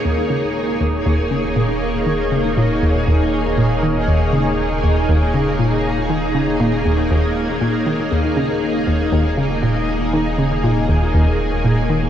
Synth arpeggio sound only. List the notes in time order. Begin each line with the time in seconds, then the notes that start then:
0.05 D#2
0.30 C#3
0.81 D#2
1.06 D#2
1.31 C#3
1.56 A#2
2.06 D#3
2.32 C#3
2.57 A#2
2.82 D#2
3.07 D#2
3.58 A#2
3.83 D#3
4.08 D#2
4.33 C#3
4.84 D#2
5.09 D#2
5.34 C#3
5.59 A#2
6.10 D#3
6.35 C#3
6.60 A#2
6.85 D#2
7.11 D#2
7.61 A#2
7.86 D#3
8.12 D#2
8.37 C#3
8.87 D#2
9.12 D#2
9.38 C#3
9.63 A#2
10.13 D#3
10.38 C#3
10.64 A#2
10.89 D#2
11.14 D#2
11.64 A#2
11.90 D#3